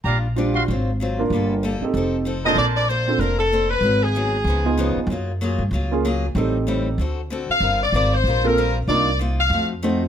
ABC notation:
X:1
M:4/4
L:1/8
Q:"Swing" 1/4=190
K:Bb
V:1 name="Saxophone section"
z8 | z6 z e | d d c2 B A2 _c- | _c _A6 z |
z8 | z6 z f- | f d d c2 B2 z | d2 z f2 z3 |]
V:2 name="Trumpet section"
[Gdfb] z2 [_Gcfc'] z4 | z6 z [DBca]- | [DBca]2 z6 | z8 |
z8 | z8 | z8 | z8 |]
V:3 name="Grand piano"
z2 [DFGc]2 z3 [B,DFB]- | [B,DFB]2 z [CEGA]3 z [B,,CDFA] | z3 [CDFA] z4 | z4 z [_CEF_A]3 |
z4 z [B,_DF_A] z2 | [CEGA]4 z4 | z4 z [B,CFA] z2 | [DEFB] z4 z [CE_Gc] z |]
V:4 name="Steel-string acoustic guitar"
[B,,G,DF] z [B,,G,DF] z [_A,,_G,CF] z [A,,G,CF] z | [G,B,FA] z [G,B,FA] z [F,CEA] z [F,CEA] z | [B,DAc] z [B,DAc] z [B,DAc] z [B,DAc] z | [_A,,_G,_CE] z [A,,G,CE] z [_D,F,CE] z [D,F,CE] z |
[_G,B,F_A] z [G,B,FA] z [G,B,FA] z [G,B,FA] z | [A,,G,CE] z [A,,G,CE] z [D,C^FA] z [D,CFA] z | [G,CFB] z [G,CFB] z [G,CFB] z [G,CFB] z | [C,B,EF] z [C,B,EF] z [F,A,E_G] z [F,A,EG] z |]
V:5 name="Upright bass" clef=bass
B,,,4 _A,,,4 | G,,,3 z F,,,4 | B,,,4 F,,,4 | _A,,,4 _D,,3 z |
_G,,3 =G,, _D,,4 | A,,,4 D,,3 z | G,,,2 _A,,,2 B,,,4 | C,,4 F,,4 |]